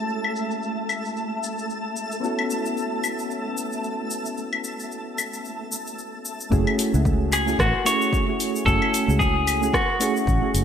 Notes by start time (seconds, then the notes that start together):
Already playing: G#3 A3 C#4 E4 F#4 A5
0.09 shaker
0.24 claves
0.36 shaker
0.51 shaker
0.63 shaker
0.89 claves, shaker
1.05 shaker
1.16 shaker
1.43 shaker
1.58 shaker
1.70 shaker
1.96 shaker
2.12 shaker
2.20 B3 C#4 E4, shaker
2.25 F#4 A4
2.39 claves
2.50 shaker
2.66 shaker
2.77 shaker
3.04 claves, shaker
3.19 shaker
3.31 shaker
3.57 shaker
3.72 shaker
3.84 shaker
4.10 shaker
4.26 shaker
4.37 shaker
4.53 claves
4.64 shaker
4.79 shaker
4.92 shaker
5.18 claves, shaker
5.33 shaker
5.45 shaker
5.72 shaker
5.87 shaker
5.98 shaker
6.25 shaker
6.40 shaker
6.50 F#1 A3 C#4 E4 F#4 G#4, kick, shaker
6.67 claves
6.79 open hi-hat, shaker
6.92 C#2 A3 C#4 E4 F#4 G#4, shaker
7.05 kick, shaker
7.32 G#4, open hi-hat, claves, shaker
7.46 A3 C#4 E4 F#4 G#4, shaker
7.59 A1 F#4, kick, cross-stick, shaker
7.84 A3 C#4 E4 F#4 G#4 C#5, open hi-hat, shaker
8.02 shaker
8.13 kick, shaker
8.27 A3 C#4 E4 F#4 G#4
8.40 open hi-hat, shaker
8.56 shaker
8.65 F#1 A3 C#4 E4 F#4 A4 G#5, kick, shaker
8.82 claves
8.94 open hi-hat, shaker
9.07 C#2 A3 C#4 E4 F#4 G#4, shaker
9.19 G#4, kick, shaker
9.47 open hi-hat, claves, shaker
9.61 A3 C#4 E4 F#4 G#4, shaker
9.74 F#4, kick, cross-stick, shaker
9.99 A3 C#4 E4 F#4 G#4, open hi-hat, shaker
10.16 shaker
10.27 A1, kick, shaker
10.41 A3 C#4 E4 F#4 G#4
10.54 F#1, open hi-hat, shaker